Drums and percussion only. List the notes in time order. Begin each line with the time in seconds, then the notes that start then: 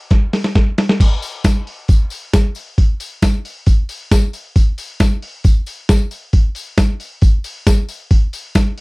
0.10 kick, snare, closed hi-hat
0.33 snare, open hi-hat
0.44 snare
0.55 kick, snare, closed hi-hat
0.78 snare, open hi-hat
0.89 snare
1.00 kick, open hi-hat, crash
1.22 open hi-hat, tambourine
1.44 kick, snare, open hi-hat, tambourine
1.67 open hi-hat
1.88 kick, open hi-hat, tambourine
2.10 open hi-hat, tambourine
2.33 kick, snare, open hi-hat, tambourine
2.55 open hi-hat, tambourine
2.78 kick, open hi-hat
3.00 open hi-hat, tambourine
3.22 kick, snare, open hi-hat, tambourine
3.45 open hi-hat, tambourine
3.66 kick, open hi-hat, tambourine
3.89 open hi-hat, tambourine
4.11 kick, snare, open hi-hat, tambourine
4.33 open hi-hat, tambourine
4.56 kick, open hi-hat, tambourine
4.78 open hi-hat, tambourine
5.00 kick, snare, open hi-hat, tambourine
5.22 open hi-hat
5.44 kick, open hi-hat, tambourine
5.66 open hi-hat, tambourine
5.89 kick, snare, open hi-hat, tambourine
6.11 open hi-hat, tambourine
6.33 kick, open hi-hat
6.55 open hi-hat, tambourine
6.78 kick, snare, open hi-hat, tambourine
7.00 open hi-hat, tambourine
7.22 kick, open hi-hat, tambourine
7.44 open hi-hat, tambourine
7.67 kick, snare, open hi-hat, tambourine
7.89 open hi-hat, tambourine
8.11 kick, open hi-hat
8.33 open hi-hat, tambourine
8.55 kick, snare, open hi-hat, tambourine
8.78 open hi-hat